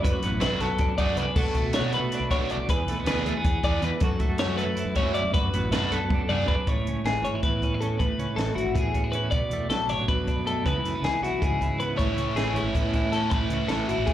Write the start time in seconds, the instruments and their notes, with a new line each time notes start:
Already playing: clean electric guitar A3
0.03 clean electric guitar F#2 E4 B4, fingered electric bass F#2, kick, closed hi-hat
0.12 clean electric guitar F#4
0.23 fingered electric bass A1, clean electric guitar B3, closed hi-hat
0.40 fingered electric bass B1, overdriven electric guitar F#3 A3 D4 F#4, clean electric guitar E4 B4, snare, closed hi-hat
0.50 clean electric guitar F#4
0.60 fingered electric bass B1, clean electric guitar B3 A4, snare, closed hi-hat
0.78 fingered electric bass F#2, clean electric guitar D4, kick, closed hi-hat
0.98 fingered electric bass F#2, overdriven electric guitar F#3 A3 D4 F#4, clean electric guitar G#4 D5, kick, closed hi-hat
1.16 fingered electric bass C2, clean electric guitar B4, closed hi-hat
1.20 clean electric guitar D4
1.36 fingered electric bass B1, clean electric guitar B2 F#4 A4, kick, crash
1.55 clean electric guitar A3, kick, closed hi-hat
1.62 fingered electric bass B1
1.73 overdriven electric guitar F#3 B3 D4 F#4, clean electric guitar F#4 C#5, snare, closed hi-hat
1.81 fingered electric bass B2
1.93 clean electric guitar A3 B4, closed hi-hat
2.00 fingered electric bass B2
2.12 clean electric guitar D4, snare, closed hi-hat
2.19 fingered electric bass B1
2.30 overdriven electric guitar F#3 B3 D4 F#4, clean electric guitar F#4 C#5, kick, snare, closed hi-hat
2.39 fingered electric bass B1
2.50 clean electric guitar D4 D5, closed hi-hat
2.57 fingered electric bass B1
2.68 fingered electric bass E2, clean electric guitar E2 G#4 B4, kick, closed hi-hat
2.85 fingered electric bass B1, snare, closed hi-hat
2.89 clean electric guitar A3
3.00 clean electric guitar B3
3.04 fingered electric bass D2, overdriven electric guitar E3 B3 D4 G#4, clean electric guitar B4, snare, closed hi-hat
3.09 clean electric guitar G#4
3.23 fingered electric bass D2, clean electric guitar G#4, closed hi-hat
3.28 clean electric guitar A3
3.37 clean electric guitar B3
3.44 fingered electric bass E2, kick, closed hi-hat
3.63 fingered electric bass E2, overdriven electric guitar E3 B3 D4 G#4, clean electric guitar D5, kick, closed hi-hat
3.82 fingered electric bass E2, clean electric guitar E2 B4, closed hi-hat
4.00 fingered electric bass F#2, clean electric guitar F#2 F#4 A4, kick, closed hi-hat
4.20 clean electric guitar A3, kick, closed hi-hat
4.29 fingered electric bass F#2
4.38 overdriven electric guitar F#3 A3 C#4 F#4, clean electric guitar A4 C#5, snare, closed hi-hat
4.48 fingered electric bass F#3
4.57 clean electric guitar A3 B4, closed hi-hat
4.67 fingered electric bass F#3
4.76 clean electric guitar E4, closed hi-hat
4.85 fingered electric bass F#2
4.95 overdriven electric guitar F#3 A3 C#4 F#4, clean electric guitar E4 C#5, kick, closed hi-hat
5.05 fingered electric bass F#2
5.14 clean electric guitar E4 D5, closed hi-hat
5.24 fingered electric bass F#2
5.33 clean electric guitar F#2 F#4 B4, fingered electric bass F#2, kick, closed hi-hat
5.53 fingered electric bass A1, clean electric guitar B3, closed hi-hat
5.71 fingered electric bass B1, overdriven electric guitar F#3 A3 D4 F#4, clean electric guitar E4 B4, snare, closed hi-hat
5.82 clean electric guitar F#4
5.91 fingered electric bass B1, clean electric guitar B3 A4, closed hi-hat
6.10 fingered electric bass F#2, kick, high tom
6.14 clean electric guitar D4
6.29 fingered electric bass F#2, overdriven electric guitar F#3 A3 D4 F#4, clean electric guitar G#4 D5, mid tom
6.48 fingered electric bass F#2, clean electric guitar D4 B4, kick
6.66 fingered electric bass A1, clean electric guitar A2 C#5, kick, closed hi-hat
6.87 fingered electric bass C#2, clean electric guitar C#4, closed hi-hat
7.05 fingered electric bass A1, clean electric guitar E3 G#4, snare, closed hi-hat
7.23 fingered electric bass G#1, clean electric guitar C#4 C#5, closed hi-hat
7.33 fingered electric bass G#1, clean electric guitar E4
7.42 clean electric guitar E2 B4, fingered electric bass A2, kick, closed hi-hat
7.62 clean electric guitar C#4, kick, closed hi-hat
7.74 clean electric guitar E4
7.81 clean electric guitar C#4 A4, closed hi-hat
7.99 fingered electric bass A1, clean electric guitar A2 B4, kick, closed hi-hat
8.18 fingered electric bass C#2, clean electric guitar C#4, closed hi-hat
8.36 fingered electric bass A1, clean electric guitar E3 A4, snare, closed hi-hat
8.55 fingered electric bass G#1, clean electric guitar E4 F#4, closed hi-hat
8.66 fingered electric bass G#1
8.74 clean electric guitar E2 G#4, fingered electric bass A2, kick, closed hi-hat
8.94 clean electric guitar C#4, kick, closed hi-hat
9.04 clean electric guitar E4
9.12 clean electric guitar C#4 B4, closed hi-hat
9.31 fingered electric bass B1, clean electric guitar B2 D5, kick, closed hi-hat
9.50 fingered electric bass E2, clean electric guitar A3, closed hi-hat
9.69 fingered electric bass B1, clean electric guitar F#3 A4, snare, closed hi-hat
9.88 fingered electric bass A1, clean electric guitar D4 C#5, snare, closed hi-hat
9.98 fingered electric bass A1
10.08 clean electric guitar F#2 B4, fingered electric bass B2, kick, closed hi-hat
10.27 clean electric guitar D4, kick, closed hi-hat
10.46 clean electric guitar A3 A4, closed hi-hat
10.64 fingered electric bass C#2, clean electric guitar C#3 E3 B3 E4 G#4 B4, kick, closed hi-hat
10.83 fingered electric bass F#2, clean electric guitar A3, snare, closed hi-hat
10.95 clean electric guitar B3
11.02 fingered electric bass C#2, clean electric guitar E3 G#4, snare, closed hi-hat
11.21 fingered electric bass B1, clean electric guitar E4 F#4, snare, closed hi-hat
11.31 fingered electric bass B1
11.42 clean electric guitar G#2 G#4, fingered electric bass C#3, kick, closed hi-hat
11.61 clean electric guitar E4, kick, closed hi-hat
11.80 clean electric guitar B3 B4, closed hi-hat
11.96 fingered electric bass A1, overdriven electric guitar A2 E3 A3 C#4 E4, clean electric guitar C#5, kick, closed hi-hat
12.01 clean electric guitar A2
12.15 fingered electric bass C#2, clean electric guitar C#4, closed hi-hat
12.35 fingered electric bass A1, overdriven electric guitar E3 A3 C#4 E4, clean electric guitar E3 G#4, snare, closed hi-hat
12.54 fingered electric bass G#1, overdriven electric guitar A3 C#4 E4, clean electric guitar E4 C#5, closed hi-hat
12.63 fingered electric bass G#1
12.74 clean electric guitar E2 B4, fingered electric bass A2, kick, closed hi-hat
12.94 clean electric guitar E4, kick, snare, closed hi-hat
13.12 overdriven electric guitar A2 E3 A3 C#4 E4, clean electric guitar A4, snare, closed hi-hat
13.16 clean electric guitar C#4
13.30 fingered electric bass A1, overdriven electric guitar A2 E3 A3 C#4 E4, clean electric guitar B4, kick, closed hi-hat
13.34 clean electric guitar A2
13.50 fingered electric bass C#2, clean electric guitar C#4, closed hi-hat
13.68 fingered electric bass A1, overdriven electric guitar E3 A3, clean electric guitar E3 A4, snare, closed hi-hat
13.73 overdriven electric guitar C#4 E4
13.88 fingered electric bass G#1, overdriven electric guitar A3 C#4 E4, clean electric guitar E4 F#4, closed hi-hat
13.98 fingered electric bass G#1
14.06 fingered electric bass A2, clean electric guitar G#4, kick, closed hi-hat